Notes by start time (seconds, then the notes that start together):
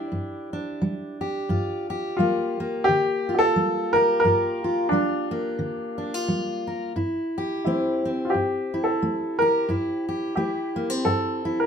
Already playing: D4 E4 G4
0.12 G2
0.53 D4
0.82 G3
1.21 G4
1.49 G2 F4
1.90 G4
2.17 G3 A#3 F4
2.60 A#3
2.84 G4
2.89 D3
3.29 F4
3.34 G4
3.39 A4
3.56 G3
3.93 G4 A#4
4.20 A#4
4.24 G2 F4
4.64 F4
4.89 G3 D4 F4
5.31 A#3
5.59 D3
5.98 D4
6.14 F4
6.28 G3
6.67 A#4
6.96 G2 E4
7.38 G4
7.65 A3 C4 E4
8.05 C4
8.25 F4
8.30 G4
8.34 G2
8.74 E4
8.84 A4
9.02 A3
9.39 G4 A#4
9.69 G2 E4
10.09 G4
10.36 A3 E4 G4
10.76 A#3
10.90 C4
11.05 G2 A4
11.45 E4
11.60 A#4